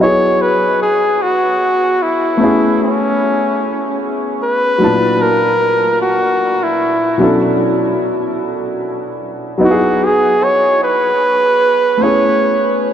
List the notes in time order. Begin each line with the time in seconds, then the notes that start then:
Already playing: F#3
0.00 B3 E4 G#4 C#5 D#5
0.42 B4
0.82 G#4
1.22 F#4
2.03 E4
2.37 A3 B3 C#4
2.42 E4 G#4
2.84 C#4
4.44 B4
4.78 F#3 A3 D4
4.83 A#2 E4 A5
5.22 A#4
6.02 F#4
6.63 E4
7.18 B2 F#3 C#4 D4
7.23 E4 A4
9.58 F#3 B3 D#4
9.62 E4 F#4
9.71 G#4
10.04 G#4
10.44 C#5
10.84 B4
11.97 A3 B3 C#4
12.02 E4 G#4 C#5